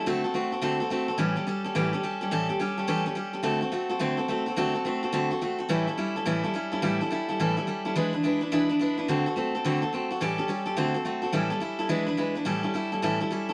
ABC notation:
X:1
M:4/4
L:1/8
Q:"Swing" 1/4=213
K:Amix
V:1 name="Steel-string acoustic guitar"
[D,A,=CFA] [CFA] [A,CFA] [CFA] [D,A,CFA] [CFA] [A,CFA] [CFA] | [A,,E,G,CGA] [G,CGA] [G,CGA] [G,CGA] [A,,E,G,CGA] [G,CGA] [G,CGA] [G,CGA] | [A,,E,G,CGA] [G,CGA] [G,CGA] [G,CGA] [A,,E,G,CGA] [G,CGA] [G,CGA] [G,CGA] | [D,A,=CFA] [CFA] [A,CFA] [CFA] [D,A,CFA] [CFA] [A,CFA] [CFA] |
[D,A,=CFA] [CFA] [A,CFA] [CFA] [D,A,CFA] [CFA] [A,CFA] [CFA] | [A,,E,G,CEA] [G,CEA] [G,CEA] [G,CEA] [A,,E,G,CEA] [G,CEA] [G,CEA] [G,CEA] | [A,,E,G,CEA] [G,CEA] [G,CEA] [G,CEA] [A,,E,G,CEA] [G,CEA] [G,CEA] [G,CEA] | [E,^G,DEB] [DEB] [G,DEB] [DEB] [E,G,DEB] [DEB] [G,DEB] [DEB] |
[D,A,=CFA] [CFA] [A,CFA] [CFA] [D,A,CFA] [CFA] [A,CFA] [CFA] | [A,,E,G,CGA] [G,CGA] [G,CGA] [G,CGA] [D,A,=CFA] [CFA] [A,CFA] [CFA] | [A,,E,G,CEA] [G,CEA] [G,CEA] [G,CEA] [E,^G,DEB] [DEB] [G,DEB] [DEB] | [A,,E,G,CEA] [G,CEA] [G,CEA] [G,CEA] [A,,E,G,CEA] [G,CEA] [G,CEA] [CEA] |]